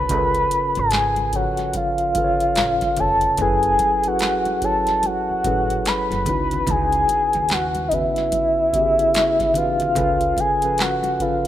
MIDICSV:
0, 0, Header, 1, 6, 480
1, 0, Start_track
1, 0, Key_signature, 4, "minor"
1, 0, Tempo, 821918
1, 57, Time_signature, 4, 2, 24, 8
1, 6701, End_track
2, 0, Start_track
2, 0, Title_t, "Soft synth lead"
2, 0, Program_c, 0, 80
2, 0, Note_on_c, 0, 83, 127
2, 462, Note_on_c, 0, 80, 103
2, 471, Note_off_c, 0, 83, 0
2, 792, Note_on_c, 0, 78, 82
2, 801, Note_off_c, 0, 80, 0
2, 1024, Note_off_c, 0, 78, 0
2, 1032, Note_on_c, 0, 77, 103
2, 1750, Note_on_c, 0, 81, 107
2, 1758, Note_off_c, 0, 77, 0
2, 1983, Note_off_c, 0, 81, 0
2, 1993, Note_on_c, 0, 80, 108
2, 2380, Note_on_c, 0, 78, 101
2, 2388, Note_off_c, 0, 80, 0
2, 2712, Note_on_c, 0, 81, 85
2, 2721, Note_off_c, 0, 78, 0
2, 2954, Note_on_c, 0, 78, 102
2, 2963, Note_off_c, 0, 81, 0
2, 3430, Note_on_c, 0, 83, 91
2, 3438, Note_off_c, 0, 78, 0
2, 3914, Note_on_c, 0, 80, 109
2, 3923, Note_off_c, 0, 83, 0
2, 4398, Note_on_c, 0, 78, 89
2, 4407, Note_off_c, 0, 80, 0
2, 4605, Note_on_c, 0, 75, 73
2, 4613, Note_off_c, 0, 78, 0
2, 4634, Note_on_c, 0, 76, 98
2, 4643, Note_off_c, 0, 75, 0
2, 5591, Note_on_c, 0, 77, 105
2, 5600, Note_off_c, 0, 76, 0
2, 6072, Note_on_c, 0, 80, 95
2, 6081, Note_off_c, 0, 77, 0
2, 6314, Note_on_c, 0, 78, 86
2, 6323, Note_off_c, 0, 80, 0
2, 6551, Note_on_c, 0, 77, 82
2, 6560, Note_off_c, 0, 78, 0
2, 6701, Note_off_c, 0, 77, 0
2, 6701, End_track
3, 0, Start_track
3, 0, Title_t, "Tine electric piano"
3, 0, Program_c, 1, 4
3, 0, Control_c, 1, 64, 127
3, 0, Note_on_c, 1, 49, 76
3, 0, Note_on_c, 1, 53, 58
3, 0, Note_on_c, 1, 61, 59
3, 0, Note_on_c, 1, 65, 63
3, 0, Note_on_c, 1, 69, 63
3, 0, Note_on_c, 1, 70, 59
3, 0, Note_on_c, 1, 71, 71
3, 0, Note_on_c, 1, 72, 59
3, 0, Note_on_c, 1, 73, 75
3, 61, Note_off_c, 1, 49, 0
3, 61, Note_on_c, 1, 49, 82
3, 64, Note_off_c, 1, 61, 0
3, 64, Note_off_c, 1, 65, 0
3, 64, Note_on_c, 1, 61, 81
3, 64, Note_on_c, 1, 65, 79
3, 68, Note_off_c, 1, 69, 0
3, 68, Note_on_c, 1, 69, 82
3, 70, Note_off_c, 1, 70, 0
3, 70, Note_on_c, 1, 70, 76
3, 107, Note_off_c, 1, 71, 0
3, 107, Note_on_c, 1, 71, 84
3, 110, Note_off_c, 1, 70, 0
3, 688, Note_off_c, 1, 49, 0
3, 689, Note_off_c, 1, 61, 0
3, 689, Note_off_c, 1, 65, 0
3, 691, Note_off_c, 1, 69, 0
3, 711, Note_off_c, 1, 71, 0
3, 781, Note_on_c, 1, 49, 65
3, 784, Note_on_c, 1, 61, 55
3, 786, Note_off_c, 1, 53, 0
3, 786, Note_on_c, 1, 53, 58
3, 788, Note_on_c, 1, 69, 60
3, 792, Note_off_c, 1, 73, 0
3, 792, Note_on_c, 1, 73, 75
3, 1198, Note_off_c, 1, 49, 0
3, 1200, Note_off_c, 1, 61, 0
3, 1201, Note_off_c, 1, 53, 0
3, 1202, Note_off_c, 1, 69, 0
3, 1204, Note_off_c, 1, 73, 0
3, 1263, Note_on_c, 1, 49, 64
3, 1264, Note_on_c, 1, 61, 61
3, 1267, Note_on_c, 1, 65, 59
3, 1270, Note_on_c, 1, 69, 66
3, 1271, Note_on_c, 1, 71, 58
3, 1309, Note_on_c, 1, 73, 75
3, 1311, Note_off_c, 1, 71, 0
3, 1679, Note_off_c, 1, 49, 0
3, 1679, Note_off_c, 1, 61, 0
3, 1681, Note_off_c, 1, 65, 0
3, 1683, Note_off_c, 1, 69, 0
3, 1702, Note_off_c, 1, 73, 0
3, 1748, Note_on_c, 1, 49, 56
3, 1750, Note_on_c, 1, 61, 57
3, 1751, Note_on_c, 1, 65, 56
3, 1752, Note_on_c, 1, 69, 55
3, 1756, Note_on_c, 1, 73, 69
3, 1952, Note_off_c, 1, 49, 0
3, 1953, Note_off_c, 1, 61, 0
3, 1954, Note_off_c, 1, 65, 0
3, 1954, Note_off_c, 1, 69, 0
3, 1956, Note_off_c, 1, 73, 0
3, 1983, Note_on_c, 1, 54, 85
3, 1984, Control_c, 1, 64, 0
3, 1986, Note_off_c, 1, 72, 0
3, 1986, Note_on_c, 1, 61, 76
3, 1988, Note_on_c, 1, 64, 83
3, 1990, Note_on_c, 1, 68, 75
3, 1991, Note_on_c, 1, 69, 82
3, 1994, Note_on_c, 1, 71, 101
3, 2100, Control_c, 1, 64, 127
3, 2295, Note_off_c, 1, 54, 0
3, 2296, Note_off_c, 1, 61, 0
3, 2297, Note_off_c, 1, 64, 0
3, 2298, Note_off_c, 1, 68, 0
3, 2298, Note_off_c, 1, 69, 0
3, 2300, Note_off_c, 1, 71, 0
3, 2375, Note_on_c, 1, 54, 59
3, 2375, Note_on_c, 1, 61, 55
3, 2378, Note_on_c, 1, 64, 58
3, 2379, Note_on_c, 1, 68, 52
3, 2381, Note_on_c, 1, 69, 54
3, 2382, Note_on_c, 1, 71, 67
3, 2656, Note_off_c, 1, 54, 0
3, 2656, Note_off_c, 1, 61, 0
3, 2658, Note_off_c, 1, 64, 0
3, 2658, Note_off_c, 1, 68, 0
3, 2659, Note_off_c, 1, 69, 0
3, 2660, Note_off_c, 1, 71, 0
3, 2703, Note_on_c, 1, 54, 66
3, 2704, Note_on_c, 1, 61, 59
3, 2707, Note_on_c, 1, 64, 61
3, 2709, Note_on_c, 1, 66, 55
3, 2711, Note_on_c, 1, 69, 56
3, 2712, Note_on_c, 1, 73, 67
3, 3119, Note_off_c, 1, 54, 0
3, 3119, Note_off_c, 1, 61, 0
3, 3121, Note_off_c, 1, 64, 0
3, 3122, Note_off_c, 1, 66, 0
3, 3123, Note_off_c, 1, 69, 0
3, 3124, Note_off_c, 1, 73, 0
3, 3185, Note_on_c, 1, 54, 65
3, 3185, Note_on_c, 1, 61, 63
3, 3188, Note_on_c, 1, 64, 63
3, 3190, Note_on_c, 1, 68, 64
3, 3191, Note_on_c, 1, 69, 62
3, 3192, Note_on_c, 1, 71, 76
3, 3661, Note_off_c, 1, 54, 0
3, 3661, Note_off_c, 1, 61, 0
3, 3662, Note_off_c, 1, 64, 0
3, 3663, Note_off_c, 1, 68, 0
3, 3664, Note_off_c, 1, 69, 0
3, 3664, Note_off_c, 1, 71, 0
3, 3664, Control_c, 1, 64, 0
3, 3666, Note_on_c, 1, 49, 76
3, 3668, Note_on_c, 1, 61, 67
3, 3669, Note_on_c, 1, 63, 72
3, 3670, Note_on_c, 1, 64, 69
3, 3673, Note_on_c, 1, 66, 63
3, 3675, Note_on_c, 1, 71, 79
3, 3765, Control_c, 1, 64, 127
3, 4481, Note_off_c, 1, 49, 0
3, 4482, Note_off_c, 1, 61, 0
3, 4483, Note_off_c, 1, 63, 0
3, 4483, Note_off_c, 1, 64, 0
3, 4485, Note_off_c, 1, 66, 0
3, 4486, Note_off_c, 1, 71, 0
3, 4626, Note_on_c, 1, 49, 70
3, 4628, Note_on_c, 1, 61, 59
3, 4630, Note_on_c, 1, 59, 62
3, 4631, Note_on_c, 1, 64, 57
3, 4633, Note_on_c, 1, 66, 56
3, 4636, Note_on_c, 1, 71, 73
3, 5040, Note_off_c, 1, 49, 0
3, 5042, Note_off_c, 1, 61, 0
3, 5043, Note_off_c, 1, 59, 0
3, 5043, Note_off_c, 1, 64, 0
3, 5044, Note_off_c, 1, 66, 0
3, 5045, Note_off_c, 1, 71, 0
3, 5101, Note_on_c, 1, 49, 69
3, 5103, Note_on_c, 1, 61, 60
3, 5105, Note_on_c, 1, 59, 67
3, 5107, Note_on_c, 1, 64, 64
3, 5107, Note_on_c, 1, 66, 64
3, 5109, Note_on_c, 1, 67, 63
3, 5147, Note_on_c, 1, 68, 71
3, 5150, Note_off_c, 1, 67, 0
3, 5518, Note_off_c, 1, 49, 0
3, 5519, Note_off_c, 1, 61, 0
3, 5520, Note_off_c, 1, 59, 0
3, 5521, Note_off_c, 1, 64, 0
3, 5521, Note_off_c, 1, 66, 0
3, 5541, Note_off_c, 1, 68, 0
3, 5583, Note_on_c, 1, 49, 66
3, 5584, Note_on_c, 1, 61, 60
3, 5586, Note_on_c, 1, 63, 62
3, 5589, Note_on_c, 1, 52, 55
3, 5590, Note_on_c, 1, 66, 55
3, 5592, Note_on_c, 1, 71, 69
3, 5789, Note_off_c, 1, 49, 0
3, 5790, Note_off_c, 1, 61, 0
3, 5791, Note_off_c, 1, 63, 0
3, 5792, Note_off_c, 1, 52, 0
3, 5793, Note_off_c, 1, 66, 0
3, 5794, Note_off_c, 1, 71, 0
3, 5821, Note_on_c, 1, 49, 94
3, 5823, Note_on_c, 1, 61, 84
3, 5825, Control_c, 1, 64, 0
3, 5825, Note_on_c, 1, 65, 79
3, 5827, Note_on_c, 1, 69, 72
3, 5828, Note_on_c, 1, 71, 90
3, 5935, Control_c, 1, 64, 127
3, 6133, Note_off_c, 1, 49, 0
3, 6134, Note_off_c, 1, 61, 0
3, 6135, Note_off_c, 1, 65, 0
3, 6137, Note_off_c, 1, 69, 0
3, 6137, Note_off_c, 1, 71, 0
3, 6211, Note_on_c, 1, 49, 68
3, 6214, Note_on_c, 1, 61, 60
3, 6215, Note_on_c, 1, 53, 55
3, 6218, Note_on_c, 1, 69, 58
3, 6221, Note_on_c, 1, 71, 69
3, 6494, Note_off_c, 1, 49, 0
3, 6495, Note_off_c, 1, 61, 0
3, 6496, Note_off_c, 1, 53, 0
3, 6497, Note_off_c, 1, 69, 0
3, 6499, Note_off_c, 1, 71, 0
3, 6540, Note_on_c, 1, 49, 67
3, 6542, Note_on_c, 1, 61, 59
3, 6545, Note_on_c, 1, 65, 61
3, 6548, Note_on_c, 1, 69, 62
3, 6550, Note_on_c, 1, 71, 75
3, 6701, Note_off_c, 1, 49, 0
3, 6701, Note_off_c, 1, 61, 0
3, 6701, Note_off_c, 1, 65, 0
3, 6701, Note_off_c, 1, 69, 0
3, 6701, Note_off_c, 1, 71, 0
3, 6701, End_track
4, 0, Start_track
4, 0, Title_t, "Upright bass"
4, 0, Program_c, 2, 32
4, 0, Note_on_c, 2, 36, 85
4, 60, Note_off_c, 2, 36, 0
4, 60, Note_on_c, 2, 37, 95
4, 258, Note_off_c, 2, 37, 0
4, 451, Note_on_c, 2, 32, 90
4, 847, Note_off_c, 2, 32, 0
4, 1504, Note_on_c, 2, 33, 76
4, 1624, Note_off_c, 2, 33, 0
4, 1746, Note_on_c, 2, 29, 78
4, 1941, Note_off_c, 2, 29, 0
4, 1978, Note_on_c, 2, 30, 95
4, 2177, Note_off_c, 2, 30, 0
4, 3182, Note_on_c, 2, 33, 89
4, 3379, Note_off_c, 2, 33, 0
4, 3571, Note_on_c, 2, 30, 79
4, 3645, Note_off_c, 2, 30, 0
4, 3663, Note_on_c, 2, 37, 90
4, 3859, Note_off_c, 2, 37, 0
4, 3902, Note_on_c, 2, 37, 105
4, 4099, Note_off_c, 2, 37, 0
4, 4293, Note_on_c, 2, 39, 89
4, 4688, Note_off_c, 2, 39, 0
4, 5821, Note_on_c, 2, 37, 97
4, 6019, Note_off_c, 2, 37, 0
4, 6701, End_track
5, 0, Start_track
5, 0, Title_t, "Muted upright bass strokes"
5, 3091, Note_on_c, 9, 29, 47
5, 3149, Note_off_c, 9, 29, 0
5, 6701, End_track
6, 0, Start_track
6, 0, Title_t, "Drums"
6, 54, Note_on_c, 9, 42, 82
6, 54, Note_on_c, 9, 62, 33
6, 54, Note_on_c, 9, 64, 73
6, 57, Note_on_c, 9, 36, 108
6, 112, Note_off_c, 9, 62, 0
6, 112, Note_off_c, 9, 64, 0
6, 113, Note_off_c, 9, 42, 0
6, 116, Note_off_c, 9, 36, 0
6, 202, Note_on_c, 9, 42, 36
6, 260, Note_off_c, 9, 42, 0
6, 298, Note_on_c, 9, 62, 26
6, 299, Note_on_c, 9, 42, 73
6, 357, Note_off_c, 9, 42, 0
6, 357, Note_off_c, 9, 62, 0
6, 440, Note_on_c, 9, 42, 42
6, 498, Note_off_c, 9, 42, 0
6, 529, Note_on_c, 9, 42, 67
6, 535, Note_on_c, 9, 62, 30
6, 544, Note_on_c, 9, 39, 78
6, 546, Note_on_c, 9, 38, 98
6, 588, Note_off_c, 9, 42, 0
6, 594, Note_off_c, 9, 62, 0
6, 603, Note_off_c, 9, 39, 0
6, 604, Note_off_c, 9, 38, 0
6, 679, Note_on_c, 9, 42, 32
6, 685, Note_on_c, 9, 63, 58
6, 738, Note_off_c, 9, 42, 0
6, 743, Note_off_c, 9, 63, 0
6, 775, Note_on_c, 9, 42, 53
6, 776, Note_on_c, 9, 36, 74
6, 778, Note_on_c, 9, 62, 23
6, 834, Note_off_c, 9, 42, 0
6, 835, Note_off_c, 9, 36, 0
6, 837, Note_off_c, 9, 62, 0
6, 919, Note_on_c, 9, 42, 41
6, 929, Note_on_c, 9, 38, 29
6, 977, Note_off_c, 9, 42, 0
6, 987, Note_off_c, 9, 38, 0
6, 1013, Note_on_c, 9, 42, 67
6, 1017, Note_on_c, 9, 36, 80
6, 1019, Note_on_c, 9, 62, 25
6, 1019, Note_on_c, 9, 63, 58
6, 1071, Note_off_c, 9, 42, 0
6, 1075, Note_off_c, 9, 36, 0
6, 1078, Note_off_c, 9, 62, 0
6, 1078, Note_off_c, 9, 63, 0
6, 1157, Note_on_c, 9, 42, 36
6, 1215, Note_off_c, 9, 42, 0
6, 1255, Note_on_c, 9, 42, 62
6, 1255, Note_on_c, 9, 62, 26
6, 1255, Note_on_c, 9, 63, 58
6, 1258, Note_on_c, 9, 36, 101
6, 1313, Note_off_c, 9, 42, 0
6, 1314, Note_off_c, 9, 62, 0
6, 1314, Note_off_c, 9, 63, 0
6, 1316, Note_off_c, 9, 36, 0
6, 1404, Note_on_c, 9, 42, 40
6, 1462, Note_off_c, 9, 42, 0
6, 1492, Note_on_c, 9, 42, 64
6, 1497, Note_on_c, 9, 62, 29
6, 1502, Note_on_c, 9, 39, 80
6, 1503, Note_on_c, 9, 38, 106
6, 1551, Note_off_c, 9, 42, 0
6, 1556, Note_off_c, 9, 62, 0
6, 1561, Note_off_c, 9, 39, 0
6, 1562, Note_off_c, 9, 38, 0
6, 1642, Note_on_c, 9, 42, 31
6, 1646, Note_on_c, 9, 36, 81
6, 1646, Note_on_c, 9, 38, 32
6, 1648, Note_on_c, 9, 63, 55
6, 1700, Note_off_c, 9, 42, 0
6, 1704, Note_off_c, 9, 38, 0
6, 1705, Note_off_c, 9, 36, 0
6, 1706, Note_off_c, 9, 63, 0
6, 1732, Note_on_c, 9, 42, 59
6, 1736, Note_on_c, 9, 64, 64
6, 1790, Note_off_c, 9, 42, 0
6, 1794, Note_off_c, 9, 64, 0
6, 1875, Note_on_c, 9, 42, 45
6, 1933, Note_off_c, 9, 42, 0
6, 1971, Note_on_c, 9, 42, 80
6, 1976, Note_on_c, 9, 36, 110
6, 1976, Note_on_c, 9, 62, 33
6, 1976, Note_on_c, 9, 64, 72
6, 2029, Note_off_c, 9, 42, 0
6, 2034, Note_off_c, 9, 36, 0
6, 2035, Note_off_c, 9, 62, 0
6, 2035, Note_off_c, 9, 64, 0
6, 2119, Note_on_c, 9, 42, 34
6, 2177, Note_off_c, 9, 42, 0
6, 2213, Note_on_c, 9, 42, 68
6, 2216, Note_on_c, 9, 36, 72
6, 2217, Note_on_c, 9, 63, 45
6, 2272, Note_off_c, 9, 42, 0
6, 2275, Note_off_c, 9, 36, 0
6, 2276, Note_off_c, 9, 63, 0
6, 2357, Note_on_c, 9, 42, 40
6, 2415, Note_off_c, 9, 42, 0
6, 2448, Note_on_c, 9, 42, 68
6, 2463, Note_on_c, 9, 39, 87
6, 2465, Note_on_c, 9, 38, 99
6, 2507, Note_off_c, 9, 42, 0
6, 2522, Note_off_c, 9, 39, 0
6, 2523, Note_off_c, 9, 38, 0
6, 2601, Note_on_c, 9, 42, 32
6, 2605, Note_on_c, 9, 63, 59
6, 2660, Note_off_c, 9, 42, 0
6, 2664, Note_off_c, 9, 63, 0
6, 2697, Note_on_c, 9, 36, 83
6, 2697, Note_on_c, 9, 42, 48
6, 2700, Note_on_c, 9, 62, 22
6, 2755, Note_off_c, 9, 42, 0
6, 2756, Note_off_c, 9, 36, 0
6, 2758, Note_off_c, 9, 62, 0
6, 2843, Note_on_c, 9, 42, 41
6, 2853, Note_on_c, 9, 38, 35
6, 2901, Note_off_c, 9, 42, 0
6, 2911, Note_off_c, 9, 38, 0
6, 2937, Note_on_c, 9, 42, 68
6, 2940, Note_on_c, 9, 62, 27
6, 2940, Note_on_c, 9, 63, 59
6, 2995, Note_off_c, 9, 42, 0
6, 2999, Note_off_c, 9, 62, 0
6, 2999, Note_off_c, 9, 63, 0
6, 3179, Note_on_c, 9, 42, 62
6, 3180, Note_on_c, 9, 36, 109
6, 3181, Note_on_c, 9, 62, 25
6, 3181, Note_on_c, 9, 63, 54
6, 3238, Note_off_c, 9, 36, 0
6, 3238, Note_off_c, 9, 42, 0
6, 3239, Note_off_c, 9, 62, 0
6, 3239, Note_off_c, 9, 63, 0
6, 3330, Note_on_c, 9, 42, 46
6, 3388, Note_off_c, 9, 42, 0
6, 3419, Note_on_c, 9, 42, 68
6, 3429, Note_on_c, 9, 39, 73
6, 3430, Note_on_c, 9, 38, 97
6, 3478, Note_off_c, 9, 42, 0
6, 3488, Note_off_c, 9, 39, 0
6, 3489, Note_off_c, 9, 38, 0
6, 3567, Note_on_c, 9, 63, 62
6, 3572, Note_on_c, 9, 42, 36
6, 3576, Note_on_c, 9, 38, 30
6, 3625, Note_off_c, 9, 63, 0
6, 3630, Note_off_c, 9, 42, 0
6, 3634, Note_off_c, 9, 38, 0
6, 3654, Note_on_c, 9, 64, 68
6, 3657, Note_on_c, 9, 42, 62
6, 3659, Note_on_c, 9, 36, 91
6, 3712, Note_off_c, 9, 64, 0
6, 3715, Note_off_c, 9, 42, 0
6, 3717, Note_off_c, 9, 36, 0
6, 3803, Note_on_c, 9, 42, 44
6, 3815, Note_on_c, 9, 64, 59
6, 3861, Note_off_c, 9, 42, 0
6, 3873, Note_off_c, 9, 64, 0
6, 3893, Note_on_c, 9, 64, 75
6, 3897, Note_on_c, 9, 42, 78
6, 3899, Note_on_c, 9, 36, 113
6, 3952, Note_off_c, 9, 64, 0
6, 3956, Note_off_c, 9, 42, 0
6, 3957, Note_off_c, 9, 36, 0
6, 4044, Note_on_c, 9, 42, 35
6, 4102, Note_off_c, 9, 42, 0
6, 4136, Note_on_c, 9, 63, 42
6, 4141, Note_on_c, 9, 42, 70
6, 4194, Note_off_c, 9, 63, 0
6, 4199, Note_off_c, 9, 42, 0
6, 4282, Note_on_c, 9, 42, 41
6, 4340, Note_off_c, 9, 42, 0
6, 4372, Note_on_c, 9, 42, 69
6, 4387, Note_on_c, 9, 39, 78
6, 4388, Note_on_c, 9, 38, 103
6, 4431, Note_off_c, 9, 42, 0
6, 4446, Note_off_c, 9, 39, 0
6, 4447, Note_off_c, 9, 38, 0
6, 4524, Note_on_c, 9, 42, 33
6, 4527, Note_on_c, 9, 63, 55
6, 4582, Note_off_c, 9, 42, 0
6, 4585, Note_off_c, 9, 63, 0
6, 4619, Note_on_c, 9, 62, 23
6, 4620, Note_on_c, 9, 36, 74
6, 4622, Note_on_c, 9, 42, 54
6, 4677, Note_off_c, 9, 62, 0
6, 4679, Note_off_c, 9, 36, 0
6, 4681, Note_off_c, 9, 42, 0
6, 4766, Note_on_c, 9, 42, 38
6, 4777, Note_on_c, 9, 38, 33
6, 4825, Note_off_c, 9, 42, 0
6, 4835, Note_off_c, 9, 38, 0
6, 4859, Note_on_c, 9, 42, 74
6, 4859, Note_on_c, 9, 62, 27
6, 4859, Note_on_c, 9, 63, 60
6, 4860, Note_on_c, 9, 36, 77
6, 4917, Note_off_c, 9, 62, 0
6, 4917, Note_off_c, 9, 63, 0
6, 4918, Note_off_c, 9, 42, 0
6, 4919, Note_off_c, 9, 36, 0
6, 5100, Note_on_c, 9, 63, 56
6, 5101, Note_on_c, 9, 36, 94
6, 5102, Note_on_c, 9, 42, 58
6, 5159, Note_off_c, 9, 63, 0
6, 5160, Note_off_c, 9, 36, 0
6, 5161, Note_off_c, 9, 42, 0
6, 5251, Note_on_c, 9, 42, 41
6, 5309, Note_off_c, 9, 42, 0
6, 5338, Note_on_c, 9, 62, 30
6, 5341, Note_on_c, 9, 42, 78
6, 5351, Note_on_c, 9, 39, 81
6, 5352, Note_on_c, 9, 38, 107
6, 5397, Note_off_c, 9, 62, 0
6, 5399, Note_off_c, 9, 42, 0
6, 5409, Note_off_c, 9, 39, 0
6, 5410, Note_off_c, 9, 38, 0
6, 5487, Note_on_c, 9, 63, 61
6, 5490, Note_on_c, 9, 36, 80
6, 5490, Note_on_c, 9, 42, 32
6, 5493, Note_on_c, 9, 38, 30
6, 5545, Note_off_c, 9, 63, 0
6, 5548, Note_off_c, 9, 42, 0
6, 5549, Note_off_c, 9, 36, 0
6, 5552, Note_off_c, 9, 38, 0
6, 5572, Note_on_c, 9, 64, 70
6, 5579, Note_on_c, 9, 42, 59
6, 5630, Note_off_c, 9, 64, 0
6, 5638, Note_off_c, 9, 42, 0
6, 5722, Note_on_c, 9, 42, 48
6, 5734, Note_on_c, 9, 64, 57
6, 5780, Note_off_c, 9, 42, 0
6, 5792, Note_off_c, 9, 64, 0
6, 5813, Note_on_c, 9, 62, 35
6, 5813, Note_on_c, 9, 64, 79
6, 5817, Note_on_c, 9, 42, 83
6, 5819, Note_on_c, 9, 36, 118
6, 5872, Note_off_c, 9, 62, 0
6, 5872, Note_off_c, 9, 64, 0
6, 5876, Note_off_c, 9, 42, 0
6, 5877, Note_off_c, 9, 36, 0
6, 5961, Note_on_c, 9, 42, 37
6, 6019, Note_off_c, 9, 42, 0
6, 6054, Note_on_c, 9, 62, 25
6, 6054, Note_on_c, 9, 63, 43
6, 6059, Note_on_c, 9, 36, 81
6, 6060, Note_on_c, 9, 42, 68
6, 6113, Note_off_c, 9, 62, 0
6, 6113, Note_off_c, 9, 63, 0
6, 6118, Note_off_c, 9, 36, 0
6, 6119, Note_off_c, 9, 42, 0
6, 6202, Note_on_c, 9, 42, 45
6, 6261, Note_off_c, 9, 42, 0
6, 6295, Note_on_c, 9, 42, 63
6, 6310, Note_on_c, 9, 39, 85
6, 6311, Note_on_c, 9, 38, 102
6, 6353, Note_off_c, 9, 42, 0
6, 6368, Note_off_c, 9, 39, 0
6, 6369, Note_off_c, 9, 38, 0
6, 6443, Note_on_c, 9, 63, 60
6, 6446, Note_on_c, 9, 42, 30
6, 6501, Note_off_c, 9, 63, 0
6, 6504, Note_off_c, 9, 42, 0
6, 6539, Note_on_c, 9, 36, 80
6, 6542, Note_on_c, 9, 42, 49
6, 6598, Note_off_c, 9, 36, 0
6, 6600, Note_off_c, 9, 42, 0
6, 6701, End_track
0, 0, End_of_file